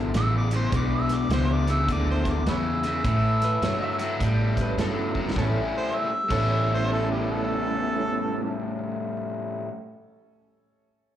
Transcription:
Already playing: fingered electric bass G#1, overdriven electric guitar E2 D3
0.14 fingered electric bass A1, overdriven electric guitar E2 C#3, harmonica E5, snare, closed hi-hat
0.37 harmonica D5
0.51 overdriven electric guitar E2 C#3, snare, closed hi-hat
0.56 harmonica C5
0.72 fingered electric bass B1, overdriven electric guitar E2 B2, tonewheel organ G#3 B3 D4 F#4, harmonica D5, kick, closed hi-hat
0.95 harmonica E5
1.09 snare, closed hi-hat
1.14 harmonica D5
1.29 fingered electric bass C#2, overdriven electric guitar E2 C#3, harmonica C5, snare, closed hi-hat
1.53 harmonica D5
1.67 overdriven electric guitar E2 C#3, snare, closed hi-hat
1.72 harmonica E5
1.88 fingered electric bass D2, overdriven electric guitar E2 D3, harmonica D5, kick, closed hi-hat
2.11 harmonica C5
2.25 kick, snare, closed hi-hat
2.30 harmonica D5
2.46 fingered electric bass E2, overdriven electric guitar E2 C#3, harmonica B4 C#5 E5, snare, closed hi-hat
2.83 overdriven electric guitar E2 C#3, snare, closed hi-hat
3.04 overdriven electric guitar A2 E3, fingered electric bass A2, kick, closed hi-hat
3.42 upright piano B4, snare, closed hi-hat
3.62 fingered electric bass G2, overdriven electric guitar A2 F#3, upright piano C#5, snare, closed hi-hat
3.79 upright piano D#5
3.83 upright piano E5
3.99 overdriven electric guitar A2 F#3, snare, closed hi-hat
4.20 overdriven electric guitar A2 G3, fingered electric bass A2, kick, closed hi-hat
4.57 tonewheel organ G3 B3 C#4 E4, kick, snare, closed hi-hat
4.61 upright piano B4
4.77 fingered electric bass G2, overdriven electric guitar A2 F#3, upright piano A4, snare, closed hi-hat
5.15 overdriven electric guitar A2 F#3, kick
5.30 tonewheel organ G3 A3, snare
5.35 fingered electric bass A1, overdriven electric guitar A2 G3 C#4 E4, tonewheel organ B3, upright piano C#4 A4, kick, snare
5.40 tonewheel organ C#4 E4
5.77 harmonica C5
5.97 harmonica E5
6.24 tonewheel organ G3 A3
6.29 fingered electric bass A1, overdriven electric guitar A2 G3 C#4, tonewheel organ B3, upright piano C#4 A4, kick, crash
6.33 tonewheel organ C#4 E4, overdriven electric guitar E4
6.74 harmonica C5
6.93 harmonica A4
7.11 harmonica G4
7.31 harmonica A4

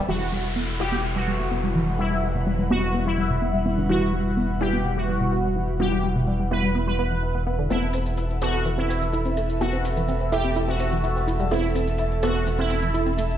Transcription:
Already playing: analog synth pad A4 E5 B5
0.08 analog synth bass E1, synth arpeggio sound E3, ambient pad G3 E5 F#5 B5, synth stab G3 E4 F#4, analog synth pad E4, analog polysynth F#4, downlifter
0.32 synth arpeggio sound G3
0.56 synth arpeggio sound B3
0.65 analog synth pad B4
0.80 synth stab G3 E4 F#4, synth arpeggio sound E4, analog polysynth G4
0.92 synth arpeggio sound B3
1.04 synth arpeggio sound B2
1.16 synth arpeggio sound G3, analog polysynth F#4
1.28 synth arpeggio sound G3
1.37 synth arpeggio sound B2, analog synth pad F#5
1.51 synth arpeggio sound B3
1.64 synth arpeggio sound G3
1.75 synth arpeggio sound E3
1.99 synth stab G3 E4 F#4, synth arpeggio sound B3, analog polysynth E4
2.11 synth arpeggio sound G3
2.23 synth arpeggio sound G3
2.35 synth arpeggio sound B2
2.47 synth arpeggio sound G3
2.59 synth arpeggio sound G3
2.70 synth stab G3 E4 F#4, synth arpeggio sound B3, analog polysynth F#4
2.83 synth arpeggio sound G3
2.94 synth arpeggio sound B3
3.06 synth arpeggio sound G3, analog polysynth E4
3.18 synth arpeggio sound G3
3.30 synth arpeggio sound B2
3.42 synth arpeggio sound B3
3.54 synth arpeggio sound G3
3.66 synth arpeggio sound B3
3.78 synth arpeggio sound D3
3.89 synth arpeggio sound E3, synth stab G3 E4 F#4, analog polysynth F#4
4.13 synth arpeggio sound G3
4.37 synth arpeggio sound B3
4.61 synth stab G3 E4 F#4, synth arpeggio sound E4, analog polysynth G4
4.73 synth arpeggio sound B3
4.85 synth arpeggio sound B2
4.97 synth arpeggio sound G3, analog polysynth F#4
5.08 synth arpeggio sound G3
5.21 synth arpeggio sound B2
5.32 synth arpeggio sound B3
5.44 synth arpeggio sound G3
5.56 synth arpeggio sound E3
5.80 synth stab G3 E4 F#4, synth arpeggio sound B3, analog polysynth G4
5.92 synth arpeggio sound G3
6.04 synth arpeggio sound G3
6.16 synth arpeggio sound B2
6.27 synth arpeggio sound G3
6.39 synth arpeggio sound G3
6.51 synth stab G3 E4 F#4, synth arpeggio sound B3, analog polysynth B4
6.63 synth arpeggio sound G3
6.75 synth arpeggio sound B3
6.87 synth arpeggio sound G3, analog polysynth B4
6.99 synth arpeggio sound B3
7.11 synth arpeggio sound E3
7.23 synth arpeggio sound E3
7.35 synth arpeggio sound B3
7.47 synth arpeggio sound B3
7.59 synth arpeggio sound D3
7.70 analog synth bass E1, synth arpeggio sound A3, synth stab B3 C4 A4, analog polysynth E4, analog synth pad A4, ambient pad A4 E5 B5, maracas
7.82 maracas
7.93 synth arpeggio sound C4, maracas
8.05 analog synth pad E5, maracas
8.17 synth arpeggio sound E4, maracas
8.30 maracas
8.42 synth stab B3 C4 A4, analog polysynth F#4, synth arpeggio sound A4, maracas
8.54 synth arpeggio sound F#4, maracas
8.65 synth arpeggio sound E3, maracas
8.78 synth arpeggio sound C4, analog polysynth E4, maracas
8.90 synth arpeggio sound C4, maracas
9.02 synth arpeggio sound E3, maracas
9.13 synth arpeggio sound E4, maracas
9.25 synth arpeggio sound C4, maracas
9.37 synth arpeggio sound A3, maracas
9.49 maracas
9.61 synth stab B3 C4 A4, synth arpeggio sound E4, analog polysynth F#4, maracas
9.73 synth arpeggio sound C4, maracas
9.85 synth arpeggio sound C4, maracas
9.97 synth arpeggio sound E3, maracas
10.08 synth arpeggio sound C4, maracas
10.20 synth arpeggio sound C4, maracas
10.32 synth stab B3 C4 A4, synth arpeggio sound E4, analog polysynth G4, maracas
10.44 synth arpeggio sound C4, maracas
10.56 synth arpeggio sound E4, maracas
10.68 synth arpeggio sound C4, analog polysynth F#4, maracas
10.80 synth arpeggio sound C4, maracas
10.92 synth arpeggio sound E3, maracas
11.03 synth arpeggio sound E4, maracas
11.16 synth arpeggio sound C4, maracas
11.28 synth arpeggio sound E4, maracas
11.40 synth arpeggio sound G3, maracas
11.51 synth arpeggio sound A3, synth stab B3 C4 A4, analog polysynth E4, ambient pad A5, maracas
11.63 maracas
11.75 synth arpeggio sound C4, maracas
11.87 maracas
11.98 synth arpeggio sound E4, maracas
12.11 maracas
12.23 synth stab B3 C4 A4, analog polysynth F#4, synth arpeggio sound A4, maracas
12.34 synth arpeggio sound F#4, maracas
12.47 synth arpeggio sound E3, maracas
12.58 synth arpeggio sound C4, analog polysynth E4, maracas
12.70 synth arpeggio sound C4, maracas
12.82 synth arpeggio sound E3, maracas
12.94 synth arpeggio sound E4, maracas
13.06 synth arpeggio sound C4, maracas
13.18 synth arpeggio sound A3, maracas
13.31 maracas

